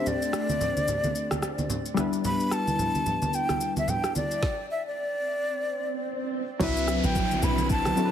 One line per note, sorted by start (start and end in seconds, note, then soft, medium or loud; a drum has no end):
0.00 1.92 A3 medium
0.00 1.92 C4 medium
0.00 1.93 D4 medium
0.00 1.94 G4 medium
0.00 1.95 C5 medium
0.06 1.71 D5 medium
0.06 low conga medium
0.06 shaker medium
0.22 shaker medium
0.33 cross-stick loud
0.33 shaker medium
0.49 high conga medium
0.49 shaker soft
0.61 low conga medium
0.61 shaker medium
0.77 high conga medium
0.77 shaker medium
0.88 low conga medium
0.88 shaker loud
1.04 high conga medium
1.04 shaker soft
1.15 shaker medium
1.31 cross-stick medium
1.31 high conga medium
1.31 shaker medium
1.43 cross-stick medium
1.43 shaker medium
1.58 high conga medium
1.58 shaker soft
1.70 low conga medium
1.70 shaker medium
1.86 shaker soft
1.94 4.10 G3 medium
1.94 4.11 B3 medium
1.94 4.11 D4 medium
1.94 cross-stick loud
1.94 high conga medium
1.94 shaker medium
1.99 4.12 E4 medium
1.99 4.13 B4 medium
2.13 shaker medium
2.24 2.54 B5 loud
2.24 low conga medium
2.24 shaker medium
2.40 shaker medium
2.51 3.36 A5 loud
2.51 cross-stick medium
2.51 shaker medium
2.67 high conga medium
2.67 shaker soft
2.79 low conga medium
2.79 shaker medium
2.95 high conga medium
2.95 shaker medium
3.06 low conga medium
3.06 shaker loud
3.22 high conga medium
3.22 shaker soft
3.33 3.77 G5 loud
3.33 shaker medium
3.49 cross-stick medium
3.49 high conga medium
3.49 shaker medium
3.61 shaker medium
3.77 3.91 E5 medium
3.77 high conga medium
3.77 shaker soft
3.88 4.16 G5 medium
3.88 low conga medium
3.88 shaker medium
4.04 cross-stick medium
4.04 shaker soft
4.15 4.67 D5 medium
4.15 high conga medium
4.15 shaker medium
4.31 shaker medium
4.43 kick loud
4.43 snare medium
4.43 swell medium
4.71 4.85 E5 medium
4.87 6.30 D5 medium
6.59 7.01 C2 loud
6.59 7.48 F#3 loud
6.59 8.12 F#3 medium
6.59 7.49 C4 medium
6.59 8.12 C4 medium
6.59 8.12 D4 medium
6.59 7.49 D4 medium
6.59 8.12 E4 medium
6.59 7.49 E4 medium
6.59 8.12 B4 medium
6.59 7.50 B4 loud
6.59 7.07 E5 loud
6.59 kick loud
6.59 crash loud
6.59 downlifter medium
6.59 low conga medium
6.59 shaker medium
6.77 shaker medium
6.88 cross-stick loud
6.88 shaker loud
7.04 7.40 A1 medium
7.04 7.45 G5 loud
7.04 high conga medium
7.04 shaker medium
7.15 kick loud
7.15 low conga medium
7.15 shaker medium
7.31 high conga medium
7.31 shaker medium
7.42 7.94 B1 loud
7.42 7.70 B5 loud
7.42 low conga medium
7.42 shaker loud
7.58 high conga medium
7.58 shaker medium
7.70 8.12 A5 loud
7.70 kick loud
7.70 shaker medium
7.85 cross-stick loud
7.85 high conga medium
7.85 shaker medium
7.96 8.12 F#3 medium
7.96 8.12 C4 medium
7.96 8.12 D4 medium
7.96 8.12 E4 medium
7.96 8.06 A4 medium
7.96 shaker medium
8.05 8.12 B4 medium